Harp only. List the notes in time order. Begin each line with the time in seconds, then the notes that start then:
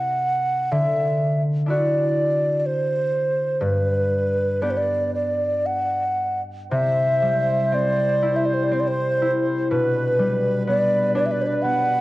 Already playing: C3 C4 E4 G4
0.71 D3
1.66 D4 E4 F#4
3.61 G2
4.62 B3 D4 G4
6.71 C3
7.22 G3
7.72 C4
8.23 E4
8.72 C4
9.22 E4
9.71 B2
10.19 G3
10.67 B3
11.15 D4
11.64 B3